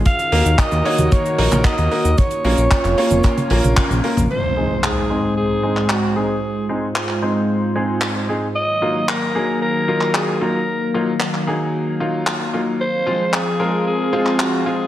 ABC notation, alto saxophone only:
X:1
M:4/4
L:1/8
Q:1/4=113
K:Ebdor
V:1 name="Alto saxophone"
f2 e2 d2 e2 | d6 z2 | c2 A2 A2 G A- | A z6 z |
e2 B2 B2 A B- | B z6 z | c2 A2 A2 G A |]